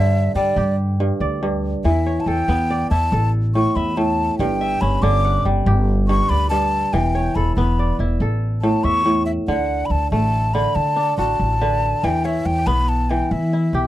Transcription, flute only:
0.00 0.32 E5 loud
0.35 0.75 D5 medium
1.85 2.22 E5 medium
2.20 2.29 A5 medium
2.27 2.90 G5 medium
2.90 3.30 A5 loud
3.55 3.77 C#6 medium
3.76 3.99 B5 medium
3.97 4.38 A5 medium
4.39 4.82 G5 medium
4.81 5.04 B5 medium
5.02 5.45 D6 medium
6.08 6.31 C#6 medium
6.29 6.49 B5 loud
6.50 6.94 A5 loud
6.93 7.37 G5 medium
7.35 7.56 B5 medium
7.56 7.96 B5 medium
8.62 8.85 A5 medium
8.84 9.25 C#6 loud
9.26 9.32 E5 medium
9.48 9.87 F#5 medium
9.86 9.93 B5 medium
9.91 10.11 A5 medium
10.12 10.55 A5 medium
10.54 10.77 B5 medium
10.75 11.17 A5 medium
11.18 12.06 A5 medium
12.04 12.27 G5 medium
12.25 12.47 E5 medium
12.46 12.68 G5 medium
12.67 12.90 B5 medium
12.89 13.11 A5 medium
13.10 13.33 G5 medium
13.31 13.87 E5 medium

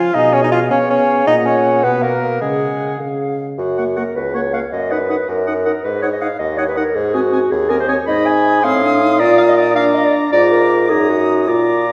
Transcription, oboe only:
0.00 0.16 F5 medium
0.14 0.34 D#5 medium
0.33 0.41 C#5 medium
0.42 0.51 D#5 medium
0.52 0.61 F5 medium
0.72 0.89 C#5 medium
0.91 1.29 C#5 medium
1.27 1.46 D#5 medium
1.47 1.86 C#5 medium
1.84 2.02 B4 medium
2.03 2.41 A#4 medium
2.41 2.99 G#4 medium
3.78 3.84 F#5 soft
3.97 4.03 F#5 soft
4.35 4.42 F#5 soft
4.54 4.60 F#5 soft
4.91 4.98 F#5 soft
5.10 5.17 F#5 soft
5.47 5.54 F#5 soft
5.65 5.72 F#5 soft
6.03 6.09 F#5 soft
6.21 6.28 F#5 soft
6.58 6.65 F#5 soft
6.77 6.83 F#5 soft
7.14 7.21 G#5 medium
7.33 7.39 G#5 medium
7.69 7.76 G#5 medium
7.89 7.95 G#5 medium
8.07 8.64 B5 medium
8.63 9.21 C6 medium
9.20 9.76 A#5 medium
9.77 10.32 A#5 medium
10.32 10.86 A#5 medium
10.91 11.48 A#5 medium
11.48 11.92 A#5 medium

